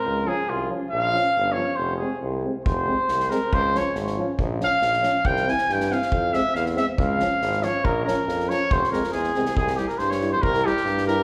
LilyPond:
<<
  \new Staff \with { instrumentName = "Trumpet" } { \time 2/4 \key f \minor \tempo 4 = 139 bes'8 aes'8 f'8 r8 | f''4. des''8 | c''8 aes'8 r4 | c''4. bes'8 |
c''8 des''8 r4 | r8 f''4. | g''8 aes''8 g''8 f''8~ | f''8 e''8 f''8 e''8 |
f''4. des''8 | bes'8 bes'4 des''8 | c''8 bes'8 aes'4 | aes'8 g'16 bes'16 c''16 des''8 c''16 |
bes'8 g'4 bes'8 | }
  \new Staff \with { instrumentName = "Euphonium" } { \time 2/4 \key f \minor r8 des'8 r8 des'8 | r8 des'8 r8 des'8 | r8 c'8 r8 c'8 | r8 c'8 r8 c'8 |
r8 des'8 r8 des'8 | r8 des'8 r8 des'8 | r8 c'8 r8 c'8 | r8 c'8 r8 c'8 |
r8 des'8 r8 des'8 | r8 des'8 r8 des'8 | r8 c'8 r8 c'8 | r8 e'8 r8 e'8 |
r8 e'8 r8 e'8 | }
  \new Staff \with { instrumentName = "Euphonium" } { \clef bass \time 2/4 \key f \minor r8 f8 r8 f8 | r8 f8 r8 f8 | r8 aes8 r8 aes8 | r8 aes8 r8 aes8 |
r8 f8 r8 f8 | r8 f8 r8 f8 | r8 e8 r8 e8 | r8 aes8 r8 aes8 |
r8 f8 r8 f8 | r8 f8 r8 f8 | r8 aes8 r8 aes8 | r8 g8 r8 g8 |
r8 g8 r8 g8 | }
  \new Staff \with { instrumentName = "Tuba" } { \clef bass \time 2/4 \key f \minor des,4 c,4 | bes,,4 g,,4 | f,,4 c,4 | f,,4 c,4 |
des,4 aes,,4 | bes,,4 bes,,4 | c,4 g,4 | f,4 e,4 |
des,4 aes,,4 | bes,,4 f,4 | f,,8 f,8 e,8 c,8 | c,4 g,4 |
c,4 g,4 | }
  \new DrumStaff \with { instrumentName = "Drums" } \drummode { \time 2/4 r4 r4 | r4 r4 | r4 r4 | bd4 sn16 sn16 sn8 |
bd8 sn8 sn16 sn8. | bd8 sn8 sn16 sn16 sn8 | bd16 sn16 sn16 sn16 sn16 sn16 sn16 sn16 | bd8 sn8 sn16 sn16 sn8 |
bd8 sn8 sn16 sn16 sn8 | bd8 sn8 sn16 sn16 sn8 | bd16 sn16 sn16 sn16 sn16 sn16 sn16 sn16 | bd16 sn16 sn16 sn16 sn16 sn16 sn8 |
bd16 sn16 sn16 sn16 sn16 sn16 sn8 | }
>>